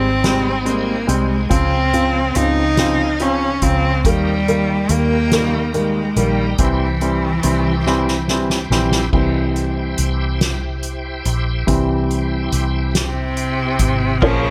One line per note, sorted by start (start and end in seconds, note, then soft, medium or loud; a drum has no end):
0.00 1.05 G#1 medium
0.00 0.70 C4 medium
0.00 1.48 D#4 soft
0.00 1.47 C5 soft
0.00 1.48 G5 medium
0.00 4.01 G#5 soft
0.24 0.50 G3 medium
0.24 0.50 G#3 medium
0.24 0.50 C4 medium
0.24 snare medium
0.24 closed hi-hat medium
0.65 0.91 G3 medium
0.65 0.91 G#3 medium
0.65 1.12 A#3 medium
0.65 0.92 C4 medium
0.65 closed hi-hat soft
1.07 1.48 C2 medium
1.07 1.34 G3 medium
1.07 1.34 G#3 medium
1.07 1.52 G#3 medium
1.07 1.34 C4 medium
1.07 closed hi-hat medium
1.49 2.31 C#2 medium
1.49 4.02 C#3 medium
1.49 1.76 C#3 medium
1.49 1.76 F3 medium
1.49 1.76 C4 medium
1.49 2.39 C4 medium
1.49 4.02 C5 soft
1.49 4.02 F5 medium
1.49 kick medium
1.49 closed hi-hat medium
1.93 2.19 C#3 medium
1.93 2.19 F3 medium
1.93 2.19 C4 medium
1.93 closed hi-hat soft
2.35 3.59 C#2 medium
2.35 2.62 C#3 medium
2.35 2.62 F3 medium
2.35 2.62 C4 medium
2.35 3.24 D#4 medium
2.35 closed hi-hat medium
2.77 3.04 C#3 medium
2.77 3.04 F3 medium
2.77 3.04 C4 medium
2.77 snare medium
2.77 closed hi-hat medium
3.19 3.46 C#3 medium
3.19 3.46 F3 medium
3.19 3.46 C4 medium
3.19 3.66 C#4 medium
3.19 closed hi-hat soft
3.62 4.05 C#2 medium
3.62 3.88 C#3 medium
3.62 3.88 F3 medium
3.62 3.88 C4 medium
3.62 4.08 C4 medium
3.62 kick medium
3.62 closed hi-hat medium
4.05 4.86 D#2 medium
4.05 4.31 D#3 medium
4.05 4.31 G3 medium
4.05 4.92 G3 medium
4.05 4.32 A#3 medium
4.05 6.57 D#4 medium
4.05 9.10 G4 medium
4.05 6.57 A#4 medium
4.05 9.10 G5 medium
4.05 kick medium
4.05 closed hi-hat medium
4.48 4.74 D#3 medium
4.48 4.74 G3 medium
4.48 4.74 A#3 medium
4.48 closed hi-hat soft
4.89 6.13 D#2 medium
4.89 5.16 D#3 medium
4.89 5.16 G3 medium
4.89 5.16 A#3 medium
4.89 5.75 A#3 loud
4.89 closed hi-hat medium
5.31 5.59 D#3 medium
5.31 5.59 G3 medium
5.31 5.59 A#3 medium
5.31 snare loud
5.31 closed hi-hat medium
5.74 6.00 D#3 medium
5.74 6.01 G3 medium
5.74 6.19 G#3 medium
5.74 6.01 A#3 medium
5.74 closed hi-hat soft
6.16 6.56 A#1 medium
6.16 6.43 D#3 medium
6.16 6.60 G3 medium
6.16 6.43 G3 medium
6.16 6.43 A#3 medium
6.16 closed hi-hat medium
6.58 7.40 C2 medium
6.58 6.85 E3 medium
6.58 8.68 E3 medium
6.58 6.85 G3 medium
6.58 6.85 C4 medium
6.58 9.11 E4 medium
6.58 9.11 C5 medium
6.58 kick loud
6.58 closed hi-hat medium
7.01 7.27 E3 medium
7.01 7.28 G3 medium
7.01 7.28 C4 medium
7.01 closed hi-hat soft
7.43 8.67 C2 medium
7.43 7.70 E3 medium
7.43 7.70 G3 medium
7.43 7.70 C4 medium
7.43 closed hi-hat medium
7.86 8.12 E3 medium
7.86 8.12 G3 medium
7.86 8.13 C4 medium
7.86 snare soft
8.08 snare soft
8.28 8.55 E3 medium
8.28 8.55 G3 medium
8.28 8.55 C4 medium
8.28 snare medium
8.50 snare medium
8.70 9.10 A#1 medium
8.70 8.97 E3 medium
8.70 8.97 G3 medium
8.70 8.97 C4 medium
8.70 snare medium
8.92 snare medium
9.12 9.94 C2 medium
9.12 10.36 E3 soft
9.12 10.36 G3 soft
9.12 10.37 C4 soft
9.12 14.18 E4 medium
9.12 14.18 G4 soft
9.12 14.18 C5 soft
9.12 14.18 G5 medium
9.12 kick medium
9.12 crash medium
9.56 closed hi-hat soft
9.98 11.21 C2 medium
9.98 closed hi-hat medium
10.41 snare loud
10.41 closed hi-hat medium
10.83 closed hi-hat soft
11.25 11.65 A#1 medium
11.25 closed hi-hat medium
11.67 12.48 C2 medium
11.67 12.90 E3 soft
11.67 12.90 G3 soft
11.67 12.91 C4 soft
11.67 kick medium
11.67 closed hi-hat medium
12.11 closed hi-hat soft
12.52 13.76 C2 medium
12.52 closed hi-hat medium
12.95 snare loud
12.95 closed hi-hat medium
13.00 14.27 C3 medium
13.37 closed hi-hat soft
13.79 14.19 G#1 medium
13.79 kick medium
13.79 closed hi-hat medium
14.21 14.50 A#1 medium
14.21 14.42 F3 medium
14.21 14.48 F3 medium
14.21 14.48 A#3 medium
14.21 14.49 C#4 medium
14.21 14.50 F4 medium
14.21 14.50 A#4 medium
14.21 14.50 C#5 medium
14.21 14.50 A#5 medium
14.21 kick loud
14.21 crash medium
14.26 14.50 C#3 loud
14.43 14.50 F3 medium